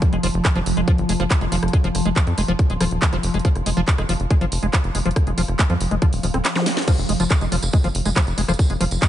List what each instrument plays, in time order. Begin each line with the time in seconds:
Already playing: synth drone F3
0.02 kick, cross-stick, closed hi-hat
0.13 analog synth bass F1, acid bass G#3, closed hi-hat
0.23 analog synth bass F1, acid bass F3, open hi-hat
0.34 analog synth bass F1
0.45 acid bass G#3, kick, cross-stick, clap, closed hi-hat
0.56 analog synth bass F1, acid bass F3, closed hi-hat
0.66 analog synth bass F1, open hi-hat
0.77 analog synth bass F1, acid bass G#3, cross-stick, closed hi-hat
0.88 acid bass F3, kick, closed hi-hat
0.98 analog synth bass G1, closed hi-hat
1.09 analog synth bass F1, acid bass G#3, open hi-hat
1.20 analog synth bass F1, acid bass F3, cross-stick, closed hi-hat
1.31 kick, clap, closed hi-hat
1.41 analog synth bass F1, acid bass G#3, closed hi-hat
1.52 analog synth bass F1, acid bass F3, open hi-hat
1.63 analog synth bass F1, cross-stick, closed hi-hat
1.68 closed hi-hat
1.73 acid bass G#3, kick, closed hi-hat
1.84 analog synth bass F1, acid bass F3, closed hi-hat
1.95 analog synth bass F1, cross-stick, open hi-hat
2.05 analog synth bass F1, acid bass G#3, closed hi-hat
2.16 acid bass F3, kick, clap, closed hi-hat
2.27 analog synth bass F2, closed hi-hat
2.38 analog synth bass F1, acid bass G#3, cross-stick, open hi-hat
2.48 analog synth bass F1, acid bass F3, closed hi-hat
2.59 kick, closed hi-hat
2.70 analog synth bass D#1, acid bass G#3, closed hi-hat
2.80 analog synth bass D#1, acid bass F3, cross-stick, open hi-hat
2.91 analog synth bass D#1, closed hi-hat
3.02 acid bass G#3, kick, clap, closed hi-hat
3.13 analog synth bass F1, acid bass F3, cross-stick, closed hi-hat
3.23 analog synth bass F1, open hi-hat
3.34 analog synth bass F1, acid bass G#3, closed hi-hat
3.39 closed hi-hat
3.45 acid bass F3, kick, closed hi-hat
3.55 analog synth bass F1, cross-stick, closed hi-hat
3.66 analog synth bass F1, acid bass G#3, open hi-hat
3.77 analog synth bass F1, acid bass F3, closed hi-hat
3.88 kick, clap, closed hi-hat
3.98 analog synth bass F1, acid bass G#3, cross-stick, closed hi-hat
4.09 analog synth bass F1, acid bass F3, open hi-hat
4.20 analog synth bass F1, closed hi-hat
4.30 acid bass G#3, kick, cross-stick, closed hi-hat
4.41 analog synth bass G1, acid bass F3, closed hi-hat
4.52 analog synth bass F1, open hi-hat
4.63 analog synth bass F1, acid bass G#3, closed hi-hat
4.73 acid bass F3, kick, cross-stick, clap, closed hi-hat
4.84 analog synth bass F1, closed hi-hat
4.95 analog synth bass F1, acid bass G#3, open hi-hat
5.05 analog synth bass F1, acid bass F3, closed hi-hat
5.11 closed hi-hat
5.16 kick, cross-stick, closed hi-hat
5.27 analog synth bass F1, acid bass G#3, closed hi-hat
5.38 analog synth bass F1, acid bass F3, open hi-hat
5.48 analog synth bass F1, cross-stick, closed hi-hat
5.59 acid bass G#3, kick, clap, closed hi-hat
5.70 analog synth bass F2, acid bass F3, closed hi-hat
5.80 analog synth bass F1, open hi-hat
5.91 analog synth bass F1, acid bass G#3, cross-stick, closed hi-hat
6.02 acid bass F3, kick, closed hi-hat
6.13 analog synth bass D#1, open hi-hat
6.23 analog synth bass D#1, acid bass F3, open hi-hat
6.34 analog synth bass D#1, acid bass C4, cross-stick, closed hi-hat
6.45 snare, clap, closed hi-hat
6.55 acid bass F3, snare, closed hi-hat, zap
6.66 acid bass C4, snare, open hi-hat
6.77 snare, closed hi-hat
6.82 closed hi-hat
6.88 acid bass F3, synth drone F3, kick, cross-stick, closed hi-hat, crash, tambourine
6.98 analog synth bass F1, closed hi-hat, tambourine
7.09 analog synth bass F1, acid bass G#3, open hi-hat
7.20 analog synth bass F1, acid bass F3, closed hi-hat, tambourine
7.30 kick, cross-stick, clap, closed hi-hat, tambourine
7.41 analog synth bass F1, acid bass G#3, closed hi-hat, tambourine
7.52 analog synth bass F1, acid bass F3, open hi-hat
7.62 analog synth bass F1, cross-stick, closed hi-hat, tambourine
7.73 acid bass G#3, kick, closed hi-hat, tambourine
7.84 analog synth bass G1, acid bass F3, closed hi-hat, tambourine
7.95 analog synth bass F1, open hi-hat
8.05 analog synth bass F1, acid bass G#3, cross-stick, closed hi-hat, tambourine
8.16 acid bass F3, kick, clap, closed hi-hat, tambourine
8.27 analog synth bass F1, closed hi-hat, tambourine
8.38 analog synth bass F1, acid bass G#3, open hi-hat
8.48 analog synth bass F1, acid bass F3, cross-stick, closed hi-hat, tambourine
8.54 closed hi-hat
8.59 kick, closed hi-hat, tambourine
8.70 analog synth bass F1, acid bass G#3, closed hi-hat, tambourine
8.80 analog synth bass F1, acid bass F3, cross-stick, open hi-hat
8.91 analog synth bass F1, closed hi-hat, tambourine
9.02 acid bass G#3, kick, clap, closed hi-hat, tambourine